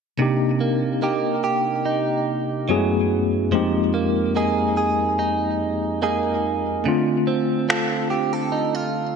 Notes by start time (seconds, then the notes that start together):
0.18 C3 A#3 D4 D#4
0.22 G4
0.61 A#3
1.02 A#3 D#4 G4
1.44 G4
1.85 D#4
2.69 F#2 F#3 G#3 B3 C#4 E4 G#4
2.76 A3
3.51 F2 F3 G#3 A#3 C4 D#4
3.55 G4
3.94 A#3
4.35 A#3 D#4 G#4
4.77 G#4
5.19 D#4
6.02 A#3 D#4 G#4
6.84 D3 A3 C4 D4
6.88 F4
7.27 C4
7.69 C4 F4 A4, finger snap
8.10 G4
8.33 A4
8.52 D#4
8.75 F4